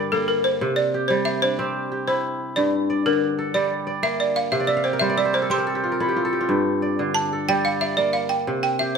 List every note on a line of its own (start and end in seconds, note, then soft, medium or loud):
0.00 0.66 G2 medium
0.00 0.66 D3 medium
0.00 0.66 G3 medium
0.00 0.19 A4 medium
0.00 0.13 A#4 medium
0.00 1.07 D5 medium
0.12 2.05 A#3 medium
0.12 0.29 A4 medium
0.28 0.43 A#4 medium
0.44 0.75 C5 medium
0.61 2.61 C3 medium
0.76 1.10 D5 medium
0.94 1.58 G4 medium
1.08 2.61 G3 medium
1.08 1.24 C5 medium
1.25 1.42 E5 loud
1.42 3.10 D4 medium
1.42 1.73 C5 medium
1.59 3.39 C4 medium
1.59 1.91 G4 medium
1.92 3.33 G4 medium
2.08 3.64 E4 medium
2.08 2.53 C5 medium
2.56 4.57 G2 medium
2.56 3.07 D5 medium
2.90 3.54 D5 medium
3.06 4.57 D3 medium
3.06 3.56 A#4 medium
3.39 4.09 A4 medium
3.54 4.57 G3 medium
3.54 4.00 D5 medium
3.54 3.86 D5 medium
3.87 4.60 D5 medium
4.03 5.48 A#3 medium
4.03 4.20 E5 loud
4.20 4.37 D5 medium
4.36 4.53 F5 medium
4.52 6.54 C3 medium
4.52 4.67 E5 medium
4.60 5.09 D5 medium
4.67 4.83 D5 medium
4.67 5.17 E5 medium
4.77 5.23 F5 medium
4.84 5.00 C5 medium
4.84 5.78 G5 medium
4.93 5.33 A#4 medium
5.00 6.54 G3 medium
5.00 5.25 C5 medium
5.00 5.16 E5 medium
5.09 6.20 D5 medium
5.17 5.35 D5 medium
5.17 5.90 E5 medium
5.25 6.44 C5 medium
5.33 5.58 A#4 medium
5.33 5.51 C5 medium
5.42 5.64 A4 medium
5.50 7.30 C4 medium
5.50 5.75 G4 medium
5.50 5.97 C6 medium
5.58 5.91 A#4 medium
5.67 5.98 A4 medium
5.75 6.08 G4 medium
5.84 6.06 F4 medium
5.92 6.31 A#4 medium
6.00 6.47 E4 medium
6.00 6.24 A4 medium
6.08 6.32 G4 medium
6.16 6.40 F4 medium
6.25 7.32 A4 medium
6.33 7.74 G4 medium
6.41 7.92 F4 medium
6.49 8.52 G2 medium
6.82 7.48 D5 medium
6.99 8.52 D3 medium
7.14 7.49 A5 loud
7.33 8.04 A4 medium
7.49 8.52 G3 medium
7.49 7.81 D5 medium
7.49 7.65 G5 loud
7.65 7.82 F5 medium
7.81 8.92 D5 medium
7.81 7.98 E5 medium
7.97 8.98 A#3 medium
7.97 8.13 D5 medium
8.13 8.29 F5 medium
8.29 8.45 G5 medium
8.47 8.98 C3 medium
8.63 8.81 G5 medium
8.79 8.98 G4 medium
8.79 8.97 E5 medium